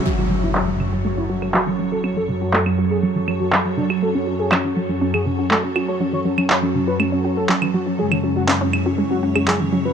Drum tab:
CL |-x----x----x----|x----x----x----x|----x----x----x-|---x----x----x--|
CP |----x-------x---|----x-------x---|----x-------x---|----x-------x---|

CL |-x----x----x----|
CP |----x-------x---|